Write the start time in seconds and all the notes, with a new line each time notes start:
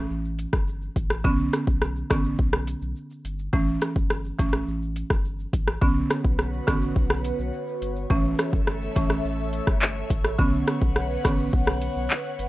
0.10 A1, shaker
0.25 shaker
0.39 closed hi-hat, shaker
0.53 G1, kick, cross-stick, shaker
0.68 shaker
0.82 shaker
0.96 A1, kick, closed hi-hat, shaker
1.10 cross-stick, shaker
1.24 B1 D3 B3 C#4, kick, shaker
1.39 shaker
1.53 cross-stick, closed hi-hat, shaker
1.67 B1, kick, shaker
1.82 cross-stick, shaker
1.96 shaker
2.10 A1 D3 B3 C#4, kick, cross-stick, closed hi-hat, shaker
2.24 shaker
2.39 B1, kick, shaker
2.53 cross-stick, shaker
2.67 closed hi-hat, shaker
2.82 B1, shaker
2.96 shaker
3.10 shaker
3.25 G1, closed hi-hat, shaker
3.39 shaker
3.53 A1 E3 A3 C#4, kick, shaker
3.68 shaker
3.82 cross-stick, closed hi-hat, shaker
3.96 G1, kick, shaker
4.10 cross-stick, shaker
4.25 shaker
4.39 A1 E3 A3 C#4, kick, closed hi-hat, shaker
4.53 cross-stick, shaker
4.68 A1, shaker
4.82 shaker
4.96 closed hi-hat, shaker
5.10 G1, kick, cross-stick, shaker
5.25 shaker
5.39 shaker
5.53 A1, kick, closed hi-hat, shaker
5.68 cross-stick, shaker
5.81 B1 D3 B3 C#4 F#4 B4 C#5, kick, shaker
5.96 shaker
6.10 cross-stick, closed hi-hat, shaker
6.24 B1, kick, shaker
6.39 cross-stick, shaker
6.53 shaker
6.67 A1 D3 B3 C#4, kick, cross-stick, closed hi-hat, shaker
6.82 shaker
6.96 B1, kick, shaker
7.10 cross-stick, shaker
7.24 closed hi-hat, shaker
7.39 B1, shaker
7.53 shaker
7.68 shaker
7.82 G1, closed hi-hat, shaker
7.96 shaker
8.10 A1 E3 A3 C#4 A4 E5, kick, shaker
8.25 shaker
8.39 cross-stick, closed hi-hat, shaker
8.53 G1, kick, shaker
8.67 cross-stick, shaker
8.82 shaker
8.96 A1 E3 A3 C#4, kick, closed hi-hat, shaker
9.10 cross-stick, shaker
9.24 A1, shaker
9.39 shaker
9.53 closed hi-hat, shaker
9.67 G1, kick, cross-stick, shaker
9.82 clap, shaker
9.96 shaker
10.10 A1, kick, closed hi-hat, shaker
10.25 cross-stick, shaker
10.39 B1 D3 B3 C#4 B4 F#5, kick, shaker
10.53 shaker
10.67 cross-stick, closed hi-hat, shaker
10.82 B1, kick, shaker
10.96 cross-stick, shaker
11.10 shaker
11.24 A1 D3 B3 C#4, kick, cross-stick, closed hi-hat, shaker
11.39 shaker
11.53 B1, kick, shaker
11.67 cross-stick, shaker
11.82 closed hi-hat, shaker
11.96 B1, shaker
12.10 clap, shaker
12.25 shaker
12.39 G1, closed hi-hat, shaker